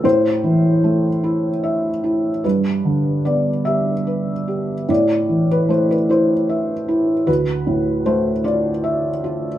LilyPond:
\new Staff \with { instrumentName = "Felt piano" } { \time 6/8 \key a \minor \tempo 4. = 50 << { c''2. | b'4 d''8 e''4. | d''8. b'16 c''16 b'16 c''4. | b'4 c''8 d''4. | } \\ { a,8 e8 a8 e'8 e''8 e'8 | g,8 d8 b8 g'8 b'8 g'8 | a,8 e8 a8 e'8 e''8 e'8 | d,8 a,8 a8 f'8 e''8 f'8 | } >> }